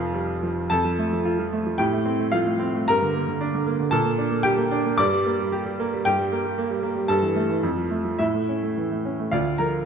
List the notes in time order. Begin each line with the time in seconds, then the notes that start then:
Already playing: F1 F2 F3 F4 F5
0.14 G3
0.43 F3
0.70 F2 A4 A5
0.85 F3
0.99 A3
1.13 F3
1.25 F4
1.39 F3
1.53 A3
1.67 F3
1.78 A2 G4 G5
1.93 A3
2.06 C4
2.19 A3
2.32 F3 F4 F5
2.46 A3
2.59 C4
2.74 A3
2.88 G2 A#4 A#5
3.02 D3
3.16 A#3
3.28 D3
3.41 D4
3.55 D3
3.66 A#3
3.80 D3
3.91 A#2 A4 A5
4.05 A#3
4.18 D4
4.31 A#3
4.43 G3 G4 G5
4.58 A#3
4.71 D4
4.86 A#3
4.98 G2 D5 D6
5.13 G3
5.26 A#3
5.40 G3
5.52 G4
5.66 G3
5.80 A#3
5.93 G3
6.05 G2 G4 G5
6.19 G3
6.32 A#3
6.45 G3
6.58 A#3
6.70 G3
6.83 A#3
6.95 G3
7.08 G2 A4 A5
7.22 E3
7.36 A3
7.49 E3
7.63 F2
7.77 F3
7.91 A3
8.05 F3
8.19 A2 E4 E5
8.34 A3
8.49 C#4
8.63 A3
8.77 E3
8.91 A3
9.05 C#4
9.20 A3
9.32 D2 F4 D5 F5
9.58 F3 A#4 A#5